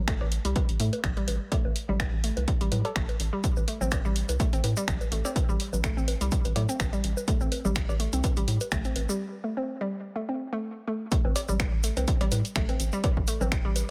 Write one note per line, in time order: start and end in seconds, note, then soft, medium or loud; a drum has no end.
0.00 0.15 A1 medium
0.08 0.17 A3 medium
0.08 finger snap loud
0.08 kick loud
0.08 closed hi-hat medium
0.21 0.39 A1 medium
0.21 cowbell medium
0.21 low bongo soft
0.32 open hi-hat medium
0.45 0.53 C2 medium
0.45 0.50 G3 loud
0.45 closed hi-hat soft
0.56 kick loud
0.56 closed hi-hat medium
0.56 low bongo soft
0.69 0.77 A1 medium
0.69 closed hi-hat soft
0.80 0.90 A2 loud
0.80 0.89 A3 medium
0.80 open hi-hat loud
0.93 closed hi-hat soft
0.93 low bongo soft
1.04 1.14 A1 medium
1.04 finger snap medium
1.04 kick loud
1.04 closed hi-hat medium
1.04 low conga medium
1.17 1.22 G3 loud
1.17 closed hi-hat soft
1.28 1.38 A1 medium
1.28 open hi-hat medium
1.28 low bongo soft
1.52 1.61 A3 medium
1.52 kick loud
1.52 closed hi-hat medium
1.52 cowbell medium
1.65 1.73 A1 medium
1.65 low bongo soft
1.76 open hi-hat medium
1.89 2.07 A1 loud
1.89 1.94 G3 loud
1.89 low conga medium
2.00 finger snap medium
2.00 kick loud
2.00 closed hi-hat medium
2.00 low bongo soft
2.13 2.31 A1 medium
2.24 2.33 A3 medium
2.24 open hi-hat loud
2.37 2.45 C2 medium
2.37 closed hi-hat soft
2.37 low bongo soft
2.48 kick loud
2.48 closed hi-hat medium
2.61 2.69 A1 loud
2.61 2.66 G3 loud
2.61 closed hi-hat soft
2.72 2.82 A2 loud
2.72 open hi-hat medium
2.72 low bongo soft
2.72 low conga medium
2.85 2.90 A4 medium
2.85 closed hi-hat soft
2.85 cowbell medium
2.96 3.06 A1 medium
2.96 3.05 A3 medium
2.96 finger snap medium
2.96 kick loud
2.96 closed hi-hat medium
3.09 closed hi-hat soft
3.09 low bongo soft
3.20 3.30 A1 medium
3.20 open hi-hat medium
3.33 3.38 G3 loud
3.44 kick loud
3.44 closed hi-hat medium
3.44 shaker medium
3.57 3.65 A1 medium
3.57 low bongo soft
3.57 shaker soft
3.68 3.77 A3 medium
3.68 open hi-hat medium
3.81 3.99 A1 medium
3.81 3.89 C4 medium
3.81 low conga medium
3.81 shaker medium
3.91 finger snap medium
3.91 kick loud
3.91 closed hi-hat medium
3.91 cowbell medium
3.91 low bongo soft
3.91 shaker medium
4.05 4.23 A1 medium
4.05 4.10 G3 loud
4.05 shaker soft
4.16 open hi-hat medium
4.29 4.37 C2 medium
4.29 closed hi-hat soft
4.29 low bongo soft
4.29 shaker medium
4.40 4.49 A3 medium
4.40 kick loud
4.40 closed hi-hat medium
4.40 shaker medium
4.53 4.61 A1 medium
4.53 4.61 C4 medium
4.53 closed hi-hat soft
4.53 shaker soft
4.64 4.74 A2 loud
4.64 open hi-hat loud
4.64 low bongo soft
4.77 4.82 G3 loud
4.77 closed hi-hat soft
4.77 shaker medium
4.88 4.98 A1 medium
4.88 finger snap medium
4.88 kick loud
4.88 closed hi-hat medium
4.88 low conga medium
4.88 shaker medium
5.01 closed hi-hat soft
5.01 low bongo soft
5.01 shaker soft
5.12 5.22 A1 medium
5.12 5.21 A3 medium
5.12 open hi-hat medium
5.25 5.33 C4 medium
5.25 cowbell medium
5.25 shaker medium
5.36 kick loud
5.36 closed hi-hat medium
5.36 low bongo soft
5.36 shaker medium
5.49 5.57 A1 medium
5.49 5.54 G3 loud
5.49 shaker soft
5.60 open hi-hat medium
5.73 5.91 A1 medium
5.73 low bongo soft
5.73 low conga medium
5.73 shaker medium
5.84 5.93 A3 medium
5.84 finger snap medium
5.84 kick loud
5.84 closed hi-hat medium
5.84 shaker medium
5.97 6.15 A1 medium
5.97 6.05 C4 medium
5.97 shaker soft
6.08 open hi-hat medium
6.08 low bongo soft
6.21 6.29 C2 medium
6.21 6.26 G3 loud
6.21 closed hi-hat soft
6.21 shaker medium
6.31 kick loud
6.31 closed hi-hat medium
6.31 shaker medium
6.45 6.53 A1 loud
6.45 closed hi-hat soft
6.45 low bongo soft
6.45 shaker soft
6.56 6.66 A2 loud
6.56 6.65 A3 medium
6.56 open hi-hat medium
6.56 cowbell medium
6.56 low conga medium
6.69 6.77 C4 medium
6.69 closed hi-hat soft
6.69 shaker medium
6.80 6.90 A1 medium
6.80 finger snap medium
6.80 kick loud
6.80 closed hi-hat medium
6.80 low bongo soft
6.80 shaker medium
6.93 6.98 G3 loud
6.93 closed hi-hat soft
6.93 shaker soft
7.04 7.14 A1 medium
7.04 open hi-hat medium
7.17 low bongo soft
7.17 shaker medium
7.28 7.37 A3 medium
7.28 kick loud
7.28 closed hi-hat medium
7.28 shaker medium
7.41 7.49 A1 medium
7.41 7.49 C4 medium
7.41 shaker soft
7.52 open hi-hat medium
7.52 low bongo soft
7.65 7.83 A1 loud
7.65 7.70 G3 loud
7.65 low conga medium
7.65 shaker medium
7.75 finger snap medium
7.75 kick loud
7.75 closed hi-hat medium
7.75 shaker medium
7.89 8.07 A1 medium
7.89 cowbell medium
7.89 low bongo soft
7.89 shaker soft
8.00 8.09 A3 medium
8.00 open hi-hat medium
8.13 8.21 C2 medium
8.13 8.21 C4 medium
8.13 closed hi-hat soft
8.13 shaker medium
8.24 kick loud
8.24 closed hi-hat medium
8.24 low bongo soft
8.24 shaker medium
8.37 8.45 A1 loud
8.37 8.42 G3 loud
8.37 closed hi-hat soft
8.37 shaker soft
8.48 8.58 A2 loud
8.48 open hi-hat medium
8.61 closed hi-hat soft
8.61 low bongo soft
8.61 shaker medium
8.72 8.82 A1 medium
8.72 8.81 A3 medium
8.72 finger snap medium
8.72 kick loud
8.72 closed hi-hat medium
8.72 low conga medium
8.72 shaker medium
8.85 8.93 C4 medium
8.85 closed hi-hat soft
8.85 shaker soft
8.96 9.06 A1 medium
8.96 open hi-hat medium
8.96 low bongo soft
9.09 9.14 G3 loud
9.09 shaker medium
9.44 9.53 A3 medium
9.57 9.65 C4 medium
9.81 9.86 G3 loud
10.16 10.25 A3 medium
10.29 10.37 C4 medium
10.53 10.58 A3 loud
10.88 10.92 A3 loud
11.12 11.21 A3 medium
11.12 kick loud
11.12 closed hi-hat medium
11.12 shaker soft
11.25 11.33 A1 medium
11.25 11.33 C4 medium
11.25 low bongo soft
11.36 open hi-hat medium
11.36 cowbell medium
11.36 shaker loud
11.48 11.67 A1 medium
11.48 11.54 G3 loud
11.48 low conga medium
11.48 shaker medium
11.60 finger snap loud
11.60 kick loud
11.60 closed hi-hat medium
11.60 low bongo soft
11.60 shaker soft
11.73 11.91 A1 medium
11.83 11.93 A3 medium
11.83 open hi-hat loud
11.83 shaker medium
11.97 12.05 C2 medium
11.97 12.05 C4 medium
11.97 closed hi-hat soft
11.97 low bongo soft
11.97 shaker medium
12.07 kick loud
12.07 closed hi-hat medium
12.07 shaker soft
12.21 12.29 A1 loud
12.21 12.26 G3 loud
12.21 closed hi-hat soft
12.21 cowbell medium
12.32 12.42 A2 loud
12.32 open hi-hat loud
12.32 low bongo soft
12.32 shaker medium
12.45 closed hi-hat soft
12.45 shaker soft
12.55 12.66 A1 medium
12.55 12.65 A3 medium
12.55 finger snap medium
12.55 kick loud
12.55 closed hi-hat medium
12.55 low conga medium
12.55 shaker soft
12.69 12.77 C4 medium
12.69 closed hi-hat soft
12.69 low bongo soft
12.80 12.90 A1 medium
12.80 open hi-hat medium
12.80 shaker medium
12.92 12.98 G3 loud
12.92 shaker soft
13.04 kick loud
13.04 closed hi-hat medium
13.04 cowbell medium
13.04 low bongo soft
13.04 shaker soft
13.17 13.25 A1 medium
13.17 kick medium
13.27 13.37 A3 medium
13.27 open hi-hat medium
13.27 shaker loud
13.41 13.59 A1 medium
13.41 13.49 C4 medium
13.41 low bongo soft
13.41 low conga medium
13.41 shaker medium
13.52 finger snap loud
13.52 kick loud
13.52 closed hi-hat medium
13.52 shaker soft
13.65 13.83 A1 medium
13.65 13.70 G3 loud
13.76 open hi-hat loud
13.76 low bongo soft
13.76 shaker loud